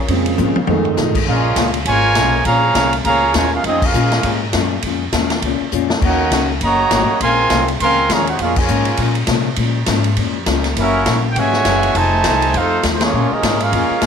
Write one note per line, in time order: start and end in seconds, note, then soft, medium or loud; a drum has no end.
0.00 0.67 C#3 medium
0.00 1.24 F3 medium
0.00 0.67 A#3 medium
0.00 1.24 G#4 medium
0.08 0.37 F2 loud
0.08 0.28 A#2 medium
0.08 0.54 C#3 soft
0.08 0.54 G#3 soft
0.08 0.28 G#3 medium
0.08 0.55 C4 medium
0.08 0.29 C#4 medium
0.08 0.29 F4 medium
0.08 kick soft
0.08 ride medium
0.26 ride medium
0.38 0.55 G#2 loud
0.38 0.57 A#2 medium
0.38 0.58 G#3 medium
0.38 0.58 C#4 medium
0.38 0.58 F4 medium
0.38 hi-hat pedal medium
0.38 high tom medium
0.56 muted upright bass stroke soft
0.56 high tom medium
0.67 0.97 F2 medium
0.67 1.25 D#3 medium
0.67 0.87 F3 medium
0.67 1.25 G#3 medium
0.67 1.25 A3 medium
0.67 0.88 A3 medium
0.67 1.27 C4 medium
0.67 1.26 D#4 medium
0.67 0.88 D#4 medium
0.67 0.88 G#4 medium
0.67 high tom medium
0.85 floor tom medium
0.97 1.08 C3 medium
0.97 1.17 F3 medium
0.97 1.17 A3 medium
0.97 1.18 D#4 medium
0.97 1.18 G#4 medium
0.97 snare medium
0.97 hi-hat pedal medium
1.08 1.17 A2 medium
1.15 1.26 F2 medium
1.15 kick medium
1.15 crash medium
1.25 1.55 A#1 loud
1.25 1.47 A#2 soft
1.25 1.70 G#3 medium
1.25 1.47 G#3 medium
1.25 1.70 C#4 medium
1.25 1.72 C#4 medium
1.25 1.71 F4 medium
1.25 1.72 G#4 medium
1.25 1.72 A#4 medium
1.25 1.72 F5 loud
1.30 1.47 C#4 soft
1.30 1.48 F4 medium
1.56 1.85 C#2 loud
1.56 1.76 A#2 medium
1.56 1.76 G#3 medium
1.56 1.76 C#4 medium
1.56 1.76 F4 medium
1.56 kick soft
1.56 snare medium
1.56 hi-hat pedal medium
1.56 ride medium
1.74 ride medium
1.85 2.14 G#1 medium
1.85 2.05 A#2 soft
1.85 2.42 C#3 loud
1.85 2.42 F3 medium
1.85 2.42 G#3 medium
1.85 2.06 G#3 soft
1.85 2.06 C#4 medium
1.85 2.42 F4 loud
1.85 2.06 F4 medium
1.85 2.42 A#4 medium
1.85 2.42 C#5 loud
1.85 2.42 G#5 loud
1.85 kick soft
1.85 ride medium
2.15 2.45 B1 medium
2.15 2.35 A#2 medium
2.15 2.35 G#3 medium
2.15 2.36 C#4 medium
2.15 2.36 F4 medium
2.15 kick soft
2.15 snare medium
2.15 hi-hat pedal medium
2.15 ride medium
2.45 2.74 A#1 loud
2.45 2.64 A#2 soft
2.45 2.93 C#3 loud
2.45 2.93 F3 loud
2.45 2.65 G#3 soft
2.45 2.93 A#3 loud
2.45 2.65 C#4 medium
2.45 2.65 F4 medium
2.45 2.94 G#4 loud
2.45 2.94 C#5 loud
2.45 2.94 F5 loud
2.45 2.93 A#5 loud
2.45 kick soft
2.45 ride medium
2.75 3.04 C2 loud
2.75 2.94 A#2 medium
2.75 2.94 G#3 medium
2.75 2.94 C#4 medium
2.75 2.95 F4 medium
2.75 kick soft
2.75 snare medium
2.75 hi-hat pedal medium
2.75 ride medium
2.93 ride medium
3.04 3.34 C#2 medium
3.04 3.24 A#2 medium
3.04 3.33 C#3 medium
3.04 3.33 F3 medium
3.04 3.24 G#3 medium
3.04 3.33 A#3 medium
3.04 3.25 C#4 medium
3.04 3.25 F4 medium
3.04 3.33 G#4 loud
3.04 3.33 C#5 loud
3.04 3.33 F5 loud
3.04 3.33 A#5 loud
3.04 kick soft
3.04 ride medium
3.34 3.63 D#2 loud
3.34 3.53 A#2 medium
3.34 3.54 C#3 medium
3.34 3.53 F3 medium
3.34 3.54 G#3 medium
3.34 3.52 G#3 medium
3.34 3.54 C#4 medium
3.34 3.54 F4 medium
3.34 3.52 A#4 medium
3.34 3.54 C#5 medium
3.34 3.54 G#5 loud
3.34 kick soft
3.34 snare medium
3.34 hi-hat pedal medium
3.34 ride medium
3.53 3.64 G#3 medium
3.53 3.64 C#4 medium
3.53 3.65 C#4 medium
3.53 3.64 F4 medium
3.53 3.65 G#4 medium
3.53 3.64 A#4 medium
3.53 3.65 F5 medium
3.64 3.93 F2 loud
3.64 3.83 A#2 medium
3.64 3.84 G#3 medium
3.64 3.82 C4 medium
3.64 3.84 C#4 medium
3.64 3.82 D#4 medium
3.64 3.84 F4 medium
3.64 3.82 F4 medium
3.64 3.82 G#4 medium
3.64 3.82 D#5 loud
3.64 kick soft
3.64 ride medium
3.82 4.43 G#3 medium
3.82 4.43 C#4 medium
3.82 4.43 F4 medium
3.82 4.43 G#4 medium
3.82 4.43 A#4 medium
3.82 4.43 F5 medium
3.82 kick loud
3.82 crash medium
3.94 4.23 A#2 loud
3.94 4.13 A#2 medium
3.94 4.14 G#3 medium
3.94 4.14 C#4 medium
3.94 4.14 F4 medium
3.94 hi-hat pedal medium
4.12 snare medium
4.12 ride medium
4.23 4.53 G#2 medium
4.23 4.43 A#2 medium
4.23 4.43 G#3 medium
4.23 4.43 C#4 medium
4.23 4.44 F4 medium
4.23 kick soft
4.23 ride medium
4.53 4.82 F#2 medium
4.53 4.73 A#2 medium
4.53 4.73 G#3 medium
4.53 4.73 C#4 medium
4.53 4.74 F4 medium
4.53 kick soft
4.53 snare medium
4.53 hi-hat pedal medium
4.53 ride medium
4.82 5.12 F2 medium
4.82 5.03 A#2 medium
4.82 5.03 G#3 medium
4.82 5.04 C#4 medium
4.82 kick soft
4.82 ride medium
4.87 5.04 F4 medium
5.13 5.41 D#2 loud
5.13 5.32 A#2 medium
5.13 5.33 G#3 medium
5.13 5.33 C#4 medium
5.13 5.33 F4 medium
5.13 kick soft
5.13 snare medium
5.13 hi-hat pedal medium
5.13 ride medium
5.30 snare medium
5.30 ride medium
5.42 5.59 C#2 medium
5.42 5.63 A#2 medium
5.42 5.63 G#3 medium
5.42 kick soft
5.42 ride medium
5.46 5.63 C#4 medium
5.46 5.64 F4 medium
5.60 muted upright bass stroke soft
5.72 6.01 F2 medium
5.72 5.92 A#2 medium
5.72 5.92 G#3 medium
5.72 5.92 C#4 medium
5.72 5.92 F4 medium
5.72 hi-hat pedal medium
5.90 snare medium
6.02 6.31 D#2 medium
6.02 6.21 D#3 medium
6.02 6.21 A#3 soft
6.02 6.48 A#3 medium
6.02 6.21 C#4 medium
6.02 6.22 F#4 medium
6.02 6.48 F#4 medium
6.02 kick medium
6.02 crash medium
6.06 6.48 C#4 medium
6.06 6.48 D#4 medium
6.06 6.48 A#4 medium
6.06 6.48 C#5 medium
6.06 6.48 F#5 loud
6.31 6.60 C#2 loud
6.31 6.50 D#3 medium
6.31 6.51 A#3 medium
6.31 6.51 C#4 medium
6.31 6.51 F#4 medium
6.31 kick soft
6.31 snare medium
6.31 hi-hat pedal medium
6.31 ride medium
6.61 6.90 F#1 medium
6.61 7.18 C#3 medium
6.61 6.81 D#3 soft
6.61 7.18 F#3 loud
6.61 6.81 A#3 medium
6.61 7.18 A#3 medium
6.61 6.81 C#4 medium
6.61 7.18 F#4 loud
6.61 6.82 F#4 medium
6.61 7.18 C#5 loud
6.61 7.18 D#5 loud
6.61 7.18 A#5 loud
6.61 kick soft
6.61 ride medium
6.91 7.07 G#1 loud
6.91 7.10 D#3 medium
6.91 7.10 A#3 medium
6.91 7.11 C#4 medium
6.91 7.11 F#4 medium
6.91 kick soft
6.91 snare medium
6.91 hi-hat pedal medium
6.91 ride medium
7.20 7.49 A#1 medium
7.20 7.40 A#2 soft
7.20 7.40 F3 medium
7.20 7.69 F3 loud
7.20 7.40 G#3 medium
7.20 7.69 G#3 loud
7.20 7.69 C4 loud
7.20 7.41 C#4 medium
7.20 7.69 A#4 loud
7.20 7.69 F5 loud
7.20 7.69 G#5 loud
7.20 7.69 C6 loud
7.20 kick soft
7.20 ride medium
7.50 7.79 C2 loud
7.50 7.70 A#2 medium
7.50 7.70 F3 medium
7.50 7.70 G#3 medium
7.50 7.70 C#4 medium
7.50 kick soft
7.50 snare medium
7.50 hi-hat pedal medium
7.50 ride medium
7.68 ride medium
7.80 8.09 C#2 medium
7.80 8.00 A#2 medium
7.80 8.09 F3 medium
7.80 8.00 F3 medium
7.80 8.08 G#3 medium
7.80 8.00 G#3 medium
7.80 8.08 C4 medium
7.80 8.00 C#4 medium
7.80 8.09 A#4 loud
7.80 8.08 F5 loud
7.80 8.08 G#5 loud
7.80 8.09 C6 loud
7.80 kick soft
7.80 ride medium
8.09 8.38 D#2 loud
8.09 8.29 A#2 medium
8.09 8.28 C#3 medium
8.09 8.28 F3 medium
8.09 8.29 F3 medium
8.09 8.29 G#3 medium
8.09 8.28 A#3 medium
8.09 8.29 C#4 medium
8.09 8.28 G#4 medium
8.09 8.28 C#5 medium
8.09 8.28 F5 medium
8.09 8.28 A#5 loud
8.09 kick soft
8.09 snare medium
8.09 hi-hat pedal medium
8.09 ride medium
8.27 8.40 D#4 medium
8.27 8.39 F#4 medium
8.27 8.40 G#4 medium
8.27 8.40 C5 medium
8.27 8.40 F#5 medium
8.27 ride medium
8.39 8.68 F2 medium
8.39 8.58 A#2 medium
8.39 8.59 F3 soft
8.39 8.56 G#3 medium
8.39 8.59 G#3 medium
8.39 8.56 C#4 medium
8.39 8.59 C#4 medium
8.39 8.57 C#4 medium
8.39 8.56 F4 medium
8.39 8.57 G#4 medium
8.39 8.57 A#4 medium
8.39 8.57 F5 loud
8.39 kick soft
8.39 ride medium
8.56 9.16 C#3 medium
8.56 9.17 F3 medium
8.56 9.17 G#3 medium
8.56 9.17 F4 medium
8.56 9.17 A#4 medium
8.56 9.17 C#5 medium
8.56 9.17 G#5 medium
8.56 kick loud
8.56 crash medium
8.68 8.97 G#2 loud
8.68 8.88 A#2 medium
8.68 8.88 F3 medium
8.68 8.88 G#3 medium
8.68 8.89 C#4 medium
8.68 hi-hat pedal medium
8.85 ride medium
8.97 9.27 A#2 medium
8.97 9.18 A#2 medium
8.97 9.18 F3 medium
8.97 9.18 G#3 medium
8.97 9.19 C#4 medium
8.97 kick soft
8.97 ride medium
9.15 ride medium
9.27 9.47 A#2 medium
9.27 9.56 C3 loud
9.27 9.48 F3 medium
9.27 9.48 G#3 medium
9.27 9.48 C#4 medium
9.27 kick soft
9.27 snare medium
9.27 hi-hat pedal medium
9.27 ride medium
9.56 9.86 A#2 loud
9.56 9.77 A#2 medium
9.56 9.77 F3 medium
9.56 9.78 G#3 medium
9.56 kick soft
9.56 ride medium
9.60 9.78 C#4 medium
9.86 10.16 G#2 loud
9.86 10.06 A#2 medium
9.86 10.07 F3 medium
9.86 10.07 G#3 medium
9.86 10.07 C#4 medium
9.86 kick soft
9.86 snare medium
9.86 hi-hat pedal medium
9.86 ride medium
10.04 ride medium
10.17 10.46 F2 medium
10.17 10.36 A#2 medium
10.17 10.37 F3 medium
10.17 10.37 G#3 medium
10.17 10.37 C#4 medium
10.17 kick soft
10.17 ride medium
10.46 10.75 C#2 medium
10.46 10.66 A#2 medium
10.46 10.66 F3 medium
10.46 10.66 G#3 medium
10.46 10.67 C#4 medium
10.46 kick soft
10.46 snare medium
10.46 hi-hat pedal medium
10.46 ride medium
10.64 snare soft
10.64 ride medium
10.76 11.05 F#1 loud
10.76 10.95 F#2 soft
10.76 10.96 E3 soft
10.76 11.21 A#3 medium
10.76 10.96 A#3 medium
10.76 11.21 C#4 medium
10.76 10.97 C#4 medium
10.76 11.22 C#4 medium
10.76 11.21 E4 medium
10.76 11.22 F#4 medium
10.76 11.22 A#4 medium
10.76 11.22 E5 medium
10.76 kick soft
10.76 ride medium
11.06 11.35 A#1 loud
11.06 11.25 F#2 medium
11.06 11.26 E3 medium
11.06 11.26 A#3 medium
11.06 11.26 C#4 medium
11.06 kick soft
11.06 snare medium
11.06 hi-hat pedal medium
11.06 ride medium
11.31 11.36 G5 medium
11.35 11.64 G#1 medium
11.35 11.55 F#2 medium
11.35 11.95 C#3 medium
11.35 11.96 E3 medium
11.35 11.55 E3 medium
11.35 11.95 G#3 medium
11.35 11.55 A#3 medium
11.35 11.56 C#4 medium
11.35 11.96 F#4 loud
11.35 11.97 C#5 loud
11.35 11.97 E5 loud
11.35 11.96 G#5 loud
11.35 kick soft
11.35 ride medium
11.53 snare soft
11.65 11.94 F#1 loud
11.65 11.85 F#2 medium
11.65 11.85 E3 medium
11.65 11.85 A#3 medium
11.65 11.85 C#4 medium
11.65 kick soft
11.65 snare medium
11.65 hi-hat pedal medium
11.65 ride medium
11.83 ride medium
11.95 12.23 F1 loud
11.95 12.55 C3 loud
11.95 12.55 D#3 loud
11.95 12.14 F3 soft
11.95 12.14 A3 medium
11.95 12.54 A3 loud
11.95 12.14 D#4 medium
11.95 12.55 D#4 loud
11.95 12.15 G#4 medium
11.95 12.55 C5 loud
11.95 12.55 G#5 loud
11.95 12.55 A5 loud
11.95 kick soft
11.95 ride medium
12.24 12.53 C2 loud
12.24 12.43 F3 medium
12.24 12.44 A3 medium
12.24 12.44 D#4 medium
12.24 12.44 G#4 medium
12.24 kick soft
12.24 snare medium
12.24 hi-hat pedal medium
12.24 ride medium
12.42 ride medium
12.54 12.83 F2 medium
12.54 12.73 F3 medium
12.54 12.74 A3 medium
12.54 12.85 A3 medium
12.54 12.85 C4 medium
12.54 12.74 D#4 medium
12.54 12.85 D#4 loud
12.54 12.85 F4 medium
12.54 12.74 G#4 medium
12.54 12.85 A4 loud
12.54 12.85 C5 medium
12.54 12.85 F5 loud
12.54 kick soft
12.54 ride medium
12.83 13.12 D#2 loud
12.83 13.03 F3 medium
12.83 13.03 A3 medium
12.83 13.03 D#4 medium
12.83 13.03 G#4 medium
12.83 kick soft
12.83 snare medium
12.83 hi-hat pedal medium
12.83 ride medium
12.95 13.03 C5 medium
13.00 13.30 F3 medium
13.00 13.30 G#3 medium
13.00 13.32 A#3 medium
13.00 13.31 C#4 medium
13.00 13.32 F4 medium
13.00 13.32 G#4 medium
13.00 13.32 C#5 medium
13.00 snare loud
13.00 ride medium
13.13 13.32 A#2 medium
13.13 13.30 A#2 medium
13.13 13.33 G#3 soft
13.13 13.33 C#4 medium
13.13 13.33 F4 medium
13.31 13.61 F3 medium
13.31 13.60 G#3 medium
13.31 13.60 C#4 medium
13.31 13.61 D#4 medium
13.31 13.60 G#4 medium
13.31 13.61 A#4 medium
13.31 13.62 D#5 medium
13.31 muted upright bass stroke soft
13.43 13.71 G#2 loud
13.43 13.62 A#2 medium
13.43 13.62 G#3 medium
13.43 13.63 C#4 medium
13.43 13.63 F4 medium
13.43 kick soft
13.43 snare medium
13.43 hi-hat pedal medium
13.43 ride medium
13.60 14.06 G#3 medium
13.60 14.06 C#4 medium
13.60 14.06 C#4 loud
13.60 14.06 F4 loud
13.60 14.06 G#4 medium
13.60 14.06 A#4 medium
13.60 14.06 F5 loud
13.60 ride medium
13.72 13.89 F2 medium
13.72 13.92 A#2 medium
13.72 13.92 G#3 medium
13.72 13.92 C#4 soft
13.72 13.93 F4 medium
13.72 kick soft
13.72 ride medium
13.90 muted upright bass stroke soft
14.01 14.06 A#1 loud
14.01 14.06 A#2 medium
14.01 kick soft
14.01 snare medium
14.01 hi-hat pedal medium
14.01 ride medium